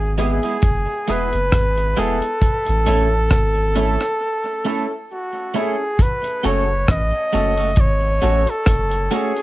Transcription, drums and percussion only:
0, 0, Header, 1, 2, 480
1, 0, Start_track
1, 0, Tempo, 893522
1, 1298, Time_signature, 4, 2, 24, 8
1, 5063, End_track
2, 0, Start_track
2, 0, Title_t, "Drums"
2, 100, Note_on_c, 9, 42, 70
2, 153, Note_off_c, 9, 42, 0
2, 232, Note_on_c, 9, 42, 49
2, 286, Note_off_c, 9, 42, 0
2, 334, Note_on_c, 9, 42, 74
2, 337, Note_on_c, 9, 36, 114
2, 387, Note_off_c, 9, 42, 0
2, 391, Note_off_c, 9, 36, 0
2, 578, Note_on_c, 9, 42, 62
2, 632, Note_off_c, 9, 42, 0
2, 714, Note_on_c, 9, 42, 47
2, 767, Note_off_c, 9, 42, 0
2, 818, Note_on_c, 9, 37, 105
2, 819, Note_on_c, 9, 36, 105
2, 820, Note_on_c, 9, 42, 84
2, 872, Note_off_c, 9, 37, 0
2, 873, Note_off_c, 9, 36, 0
2, 874, Note_off_c, 9, 42, 0
2, 954, Note_on_c, 9, 42, 43
2, 1007, Note_off_c, 9, 42, 0
2, 1060, Note_on_c, 9, 42, 68
2, 1113, Note_off_c, 9, 42, 0
2, 1193, Note_on_c, 9, 42, 43
2, 1246, Note_off_c, 9, 42, 0
2, 1296, Note_on_c, 9, 42, 84
2, 1298, Note_on_c, 9, 36, 114
2, 1350, Note_off_c, 9, 42, 0
2, 1352, Note_off_c, 9, 36, 0
2, 1431, Note_on_c, 9, 42, 54
2, 1484, Note_off_c, 9, 42, 0
2, 1538, Note_on_c, 9, 42, 79
2, 1592, Note_off_c, 9, 42, 0
2, 1776, Note_on_c, 9, 37, 109
2, 1778, Note_on_c, 9, 36, 101
2, 1778, Note_on_c, 9, 42, 72
2, 1830, Note_off_c, 9, 37, 0
2, 1831, Note_off_c, 9, 36, 0
2, 1832, Note_off_c, 9, 42, 0
2, 2017, Note_on_c, 9, 42, 68
2, 2071, Note_off_c, 9, 42, 0
2, 2150, Note_on_c, 9, 42, 47
2, 2152, Note_on_c, 9, 37, 60
2, 2204, Note_off_c, 9, 42, 0
2, 2206, Note_off_c, 9, 37, 0
2, 3217, Note_on_c, 9, 42, 98
2, 3218, Note_on_c, 9, 36, 125
2, 3271, Note_off_c, 9, 42, 0
2, 3272, Note_off_c, 9, 36, 0
2, 3352, Note_on_c, 9, 42, 56
2, 3406, Note_off_c, 9, 42, 0
2, 3460, Note_on_c, 9, 42, 82
2, 3514, Note_off_c, 9, 42, 0
2, 3697, Note_on_c, 9, 36, 112
2, 3697, Note_on_c, 9, 37, 108
2, 3699, Note_on_c, 9, 42, 80
2, 3751, Note_off_c, 9, 36, 0
2, 3751, Note_off_c, 9, 37, 0
2, 3752, Note_off_c, 9, 42, 0
2, 3937, Note_on_c, 9, 42, 69
2, 3991, Note_off_c, 9, 42, 0
2, 4069, Note_on_c, 9, 42, 52
2, 4123, Note_off_c, 9, 42, 0
2, 4169, Note_on_c, 9, 42, 87
2, 4175, Note_on_c, 9, 36, 127
2, 4223, Note_off_c, 9, 42, 0
2, 4229, Note_off_c, 9, 36, 0
2, 4416, Note_on_c, 9, 42, 69
2, 4469, Note_off_c, 9, 42, 0
2, 4551, Note_on_c, 9, 42, 53
2, 4605, Note_off_c, 9, 42, 0
2, 4654, Note_on_c, 9, 37, 111
2, 4656, Note_on_c, 9, 42, 99
2, 4657, Note_on_c, 9, 36, 116
2, 4708, Note_off_c, 9, 37, 0
2, 4710, Note_off_c, 9, 42, 0
2, 4711, Note_off_c, 9, 36, 0
2, 4789, Note_on_c, 9, 42, 49
2, 4843, Note_off_c, 9, 42, 0
2, 4897, Note_on_c, 9, 42, 74
2, 4951, Note_off_c, 9, 42, 0
2, 5031, Note_on_c, 9, 42, 47
2, 5063, Note_off_c, 9, 42, 0
2, 5063, End_track
0, 0, End_of_file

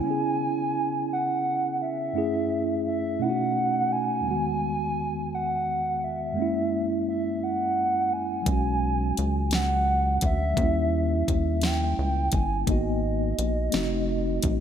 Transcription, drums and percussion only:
0, 0, Header, 1, 2, 480
1, 0, Start_track
1, 0, Tempo, 701754
1, 29, Time_signature, 6, 3, 24, 8
1, 9988, End_track
2, 0, Start_track
2, 0, Title_t, "Drums"
2, 5789, Note_on_c, 9, 36, 95
2, 5789, Note_on_c, 9, 42, 69
2, 5857, Note_off_c, 9, 42, 0
2, 5858, Note_off_c, 9, 36, 0
2, 6275, Note_on_c, 9, 42, 63
2, 6344, Note_off_c, 9, 42, 0
2, 6504, Note_on_c, 9, 42, 57
2, 6517, Note_on_c, 9, 38, 93
2, 6573, Note_off_c, 9, 42, 0
2, 6585, Note_off_c, 9, 38, 0
2, 6985, Note_on_c, 9, 42, 75
2, 6993, Note_on_c, 9, 36, 87
2, 7054, Note_off_c, 9, 42, 0
2, 7062, Note_off_c, 9, 36, 0
2, 7230, Note_on_c, 9, 36, 109
2, 7232, Note_on_c, 9, 42, 64
2, 7298, Note_off_c, 9, 36, 0
2, 7301, Note_off_c, 9, 42, 0
2, 7717, Note_on_c, 9, 36, 78
2, 7718, Note_on_c, 9, 42, 65
2, 7785, Note_off_c, 9, 36, 0
2, 7786, Note_off_c, 9, 42, 0
2, 7945, Note_on_c, 9, 42, 63
2, 7957, Note_on_c, 9, 38, 96
2, 8013, Note_off_c, 9, 42, 0
2, 8025, Note_off_c, 9, 38, 0
2, 8424, Note_on_c, 9, 42, 74
2, 8432, Note_on_c, 9, 36, 85
2, 8493, Note_off_c, 9, 42, 0
2, 8500, Note_off_c, 9, 36, 0
2, 8668, Note_on_c, 9, 36, 96
2, 8668, Note_on_c, 9, 42, 77
2, 8736, Note_off_c, 9, 36, 0
2, 8737, Note_off_c, 9, 42, 0
2, 9156, Note_on_c, 9, 42, 62
2, 9224, Note_off_c, 9, 42, 0
2, 9386, Note_on_c, 9, 42, 62
2, 9398, Note_on_c, 9, 38, 89
2, 9454, Note_off_c, 9, 42, 0
2, 9466, Note_off_c, 9, 38, 0
2, 9867, Note_on_c, 9, 42, 85
2, 9874, Note_on_c, 9, 36, 88
2, 9935, Note_off_c, 9, 42, 0
2, 9942, Note_off_c, 9, 36, 0
2, 9988, End_track
0, 0, End_of_file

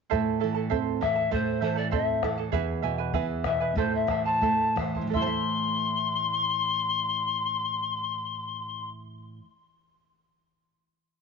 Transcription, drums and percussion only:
0, 0, Header, 1, 2, 480
1, 0, Start_track
1, 0, Key_signature, 0, "minor"
1, 0, Tempo, 604839
1, 82, Time_signature, 2, 2, 24, 8
1, 2482, Tempo, 645161
1, 3442, Tempo, 715137
1, 3922, Tempo, 743494
1, 7847, End_track
2, 0, Start_track
2, 0, Title_t, "Bombo"
2, 95, Note_on_c, 9, 43, 49
2, 174, Note_off_c, 9, 43, 0
2, 570, Note_on_c, 9, 43, 46
2, 649, Note_off_c, 9, 43, 0
2, 814, Note_on_c, 9, 37, 37
2, 814, Note_on_c, 9, 43, 38
2, 893, Note_off_c, 9, 37, 0
2, 893, Note_off_c, 9, 43, 0
2, 1053, Note_on_c, 9, 43, 49
2, 1132, Note_off_c, 9, 43, 0
2, 1529, Note_on_c, 9, 43, 55
2, 1609, Note_off_c, 9, 43, 0
2, 1769, Note_on_c, 9, 37, 45
2, 1769, Note_on_c, 9, 43, 46
2, 1848, Note_off_c, 9, 37, 0
2, 1848, Note_off_c, 9, 43, 0
2, 2005, Note_on_c, 9, 43, 61
2, 2084, Note_off_c, 9, 43, 0
2, 2484, Note_on_c, 9, 43, 60
2, 2559, Note_off_c, 9, 43, 0
2, 2716, Note_on_c, 9, 37, 45
2, 2716, Note_on_c, 9, 43, 45
2, 2791, Note_off_c, 9, 37, 0
2, 2791, Note_off_c, 9, 43, 0
2, 2956, Note_on_c, 9, 43, 67
2, 3030, Note_off_c, 9, 43, 0
2, 3193, Note_on_c, 9, 37, 43
2, 3193, Note_on_c, 9, 43, 45
2, 3267, Note_off_c, 9, 37, 0
2, 3267, Note_off_c, 9, 43, 0
2, 3443, Note_on_c, 9, 43, 47
2, 3510, Note_off_c, 9, 43, 0
2, 3680, Note_on_c, 9, 37, 40
2, 3680, Note_on_c, 9, 43, 41
2, 3747, Note_off_c, 9, 37, 0
2, 3747, Note_off_c, 9, 43, 0
2, 3805, Note_on_c, 9, 43, 31
2, 3872, Note_off_c, 9, 43, 0
2, 3930, Note_on_c, 9, 43, 54
2, 3994, Note_off_c, 9, 43, 0
2, 7847, End_track
0, 0, End_of_file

